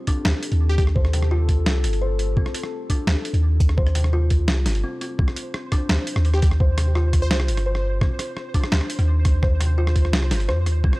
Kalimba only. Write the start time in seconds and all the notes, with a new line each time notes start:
0.07 D4
0.96 C5
1.14 C3
1.31 F4
2.02 C5
2.37 C4
2.90 D4
3.77 C5
3.95 C3
4.13 F4
4.84 C4
5.01 C4
5.19 C4
5.72 D4
6.60 C5
6.78 C3
6.95 F4
7.66 C5
8.01 C4
8.54 D4
9.43 C5
9.60 C3
9.78 F4
10.48 C5
10.84 C4